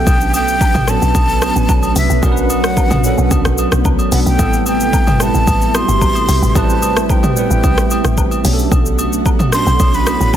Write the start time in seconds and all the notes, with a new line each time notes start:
Already playing: F#3 A3 B3 C#4 D4 A4 B4 G5
0.07 B1, kick, high agogo, shaker
0.21 shaker
0.34 G5, high agogo, shaker
0.48 shaker
0.61 kick, low woodblock, shaker
0.74 A1, mid tom, high agogo, shaker
0.87 F#3 B3 C#4 D4 A4 A5, cross-stick, shaker
1.02 B1, shaker
1.15 B1, kick, high agogo, shaker
1.29 shaker
1.41 F#3 B3 C#4 D4 B4, cross-stick, high agogo, shaker
1.56 A1, shaker
1.69 B1, kick, low woodblock, shaker
1.83 high agogo, shaker
1.96 C2 E5, open hi-hat, shaker
2.10 B1, shaker
2.22 B1 F#3 B3 C#4 D4 A#4 F#5, kick, high agogo, shaker
2.32 B4
2.37 shaker
2.50 high agogo, shaker
2.64 cross-stick, shaker
2.77 kick, low woodblock, shaker
2.90 A1, mid tom, high agogo, shaker
3.03 F#3 B3 C#4 D4 A4, shaker
3.18 B1, shaker
3.31 C2, kick, high agogo, shaker
3.45 B1, cross-stick, shaker
3.58 high agogo, shaker
3.72 B1, cross-stick, shaker
3.85 C2, kick, low woodblock, shaker
3.99 high agogo, shaker
4.11 B1 F#3 B3 C#4 D4 A4 F#5, open hi-hat, shaker
4.26 B1 G5, shaker
4.38 A1 C3 G3 B3 C4 E4 G4 A4 E5, kick, high agogo, shaker
4.53 shaker
4.66 G5, high agogo, shaker
4.80 shaker
4.93 kick, low woodblock, shaker
5.07 G1, mid tom, high agogo, shaker
5.19 G3 B3 C4 E4 B4 A5, cross-stick, shaker
5.34 A1, shaker
5.47 A1, kick, high agogo, shaker
5.61 shaker
5.73 G3 B3 C4 E4 F#4 C6, cross-stick, high agogo, shaker
5.83 G4
5.88 G1, shaker
6.01 A1, kick, low woodblock, shaker
6.15 high agogo, shaker
6.28 C2, open hi-hat, shaker
6.42 A1, shaker
6.55 A1 G3 C4 E4 B4 A5, kick, high agogo, shaker
6.64 C5
6.70 shaker
6.82 high agogo, shaker
6.97 cross-stick, shaker
7.10 G5, kick, low woodblock, shaker
7.23 G1, mid tom, high agogo, shaker
7.36 G3 B3 C4 E4 B4, shaker
7.51 A1, shaker
7.64 C2, kick, high agogo, shaker
7.78 A1, cross-stick, shaker
7.91 high agogo, shaker
8.04 A1, cross-stick, shaker
8.18 kick, low woodblock, shaker
8.31 high agogo, shaker
8.44 B1 F#3 B3 C#4 D4 F#4 G#4 F#5, open hi-hat, shaker
8.53 A4
8.59 shaker
8.72 B1, kick, high agogo, shaker
8.86 shaker
8.99 high agogo, shaker
9.13 shaker
9.26 kick, low woodblock, shaker
9.39 A1, mid tom, high agogo, shaker
9.52 F#3 B3 C#4 D4 A4 C6, cross-stick, shaker
9.67 B1, shaker
9.80 B1, kick, high agogo, shaker
9.94 B5, shaker
10.06 F#3 B3 C#4 D4 E4, cross-stick, high agogo, shaker
10.20 A1, shaker
10.34 low woodblock, shaker